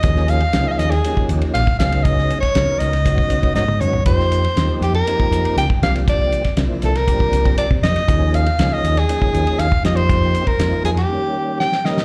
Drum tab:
RD |x-xxx-xxx-xxx-xx|x-xxx-xxx-xx----|x-xxx-xxx-xxx-xx|x-xxx-xxx-xxx-xx|
HH |p-p-p-p-p-p-p-p-|p-p-p-p-p-p-p-p-|p-p-p-p-p-p-p-p-|p-p-p-p-p-p-p-p-|
SD |-o--o-oo------o-|-o-oo-oo----o---|-o--o---------oo|---oo-oo------oo|
T1 |----------------|-------------o--|----------------|----------------|
T2 |----------------|--------------o-|----------------|----------------|
FT |----------------|---------------o|----------------|----------------|
BD |o--------o---o--|o--o----oo-o----|o--------o---o--|o--o----oo-o-o--|

RD |x-xxx-xxx-xxx-xx|x-xxx-xx--------|
HH |p-p-p-p-p-p-p-p-|p-p-p-p---------|
SD |----o--o------o-|----o-oo----oooo|
T1 |----------------|----------------|
T2 |----------------|----------------|
FT |----------------|----------------|
BD |o--------o---o--|o--o------------|